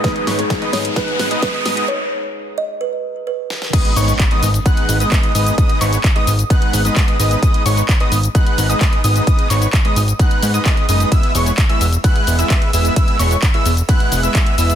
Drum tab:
CC |----------------|----------------|x---------------|----------------|
RD |----------------|----------------|----------------|----------------|
HH |xxoxxxoxxxoxxxox|----------------|xxoxxxoxxxoxxxox|xxoxxxoxxxoxxxox|
SH |----------------|----------------|x-xxx-xxx-xxx-xx|x-xxx-xxx-xxx-xx|
CP |----------------|----------------|----x-------x---|--x-x-------x---|
SD |o-o-o-o-o-o-o-o-|--------------oo|----------------|----------------|
BD |o---o---o---o---|----------------|o---o---o---o---|o---o---o---o---|

CC |----------------|----------------|----------------|----------------|
RD |----------------|----------------|x---x---x---x---|x---x---x---x---|
HH |xxoxxxoxxxoxxxox|xxoxxxoxxxoxxxox|xxoxxxoxxxoxxxox|xxoxxxoxxxoxxxox|
SH |x-xxx-xxx-xxx-xx|x-xxx-xxx-xxx-xx|x-xxx-xxx-xxx-xx|x-xxx-xxx-xxx-xx|
CP |----x-------x---|--x-x-------x---|----x-------x---|--x-x-------x---|
SD |----------------|----------------|----------------|----------------|
BD |o---o---o---o---|o---o---o---o---|o---o---o---o---|o---o---o---o---|